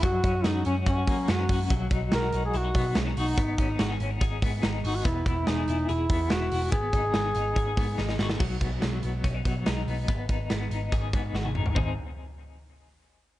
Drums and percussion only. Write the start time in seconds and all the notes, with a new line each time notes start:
0.03 kick, hi-hat pedal, open hi-hat
0.24 kick, hi-hat pedal, open hi-hat
0.44 snare, hi-hat pedal, open hi-hat
0.65 hi-hat pedal, open hi-hat
0.86 kick, hi-hat pedal, open hi-hat
1.07 kick, hi-hat pedal, open hi-hat
1.28 snare, hi-hat pedal, open hi-hat
1.49 kick, hi-hat pedal, open hi-hat
1.70 kick, hi-hat pedal, open hi-hat
1.90 kick, hi-hat pedal, open hi-hat
2.12 snare, hi-hat pedal, open hi-hat
2.32 hi-hat pedal, open hi-hat
2.53 hi-hat pedal, open hi-hat
2.74 kick, hi-hat pedal, open hi-hat
2.95 snare, hi-hat pedal, open hi-hat
3.17 hi-hat pedal, open hi-hat
3.38 kick, hi-hat pedal, open hi-hat
3.58 kick, hi-hat pedal, open hi-hat
3.79 snare, hi-hat pedal, open hi-hat
4.00 hi-hat pedal, open hi-hat
4.21 kick, hi-hat pedal, open hi-hat
4.42 kick, hi-hat pedal, open hi-hat
4.63 snare, hi-hat pedal, open hi-hat
4.84 hi-hat pedal, open hi-hat
5.05 kick, hi-hat pedal, open hi-hat
5.26 kick, hi-hat pedal, open hi-hat
5.47 snare, hi-hat pedal, open hi-hat
5.68 hi-hat pedal, open hi-hat
5.89 hi-hat pedal, open hi-hat
6.09 kick, hi-hat pedal, open hi-hat
6.30 snare, hi-hat pedal, open hi-hat
6.51 hi-hat pedal, open hi-hat
6.72 kick, hi-hat pedal, open hi-hat
6.93 kick, hi-hat pedal, open hi-hat
7.14 snare, hi-hat pedal, open hi-hat
7.35 hi-hat pedal, open hi-hat
7.56 kick, hi-hat pedal, open hi-hat
7.77 kick, hi-hat pedal, open hi-hat
7.98 snare
8.09 snare
8.19 snare
8.30 snare
8.40 kick, crash
8.61 kick, closed hi-hat
8.82 snare, closed hi-hat
9.03 closed hi-hat
9.24 kick, closed hi-hat
9.45 kick, closed hi-hat
9.66 snare, closed hi-hat
9.88 open hi-hat
10.08 kick, closed hi-hat
10.29 kick, closed hi-hat
10.50 snare, closed hi-hat
10.71 closed hi-hat
10.92 kick, closed hi-hat
11.13 kick, closed hi-hat
11.35 snare
11.45 high tom
11.55 mid tom
11.66 floor tom
11.76 kick, floor tom